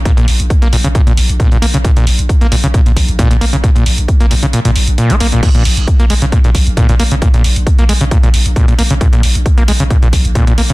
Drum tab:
CC |----------------|----------------|----------------|x---------------|
HH |xxoxxxoxxxoxxxox|xxoxxxoxxxoxxxox|xxoxxxoxxxoxxxox|xxoxxxoxxxoxxxox|
BD |o---o---o---o---|o---o---o-o-o---|o---o-----------|o---o---o-o-o---|

CC |----------------|----------------|
HH |xxoxxxoxxxoxxxox|xxoxxxoxxxoxxxox|
BD |o---o---o---o---|o---o---o-o-o---|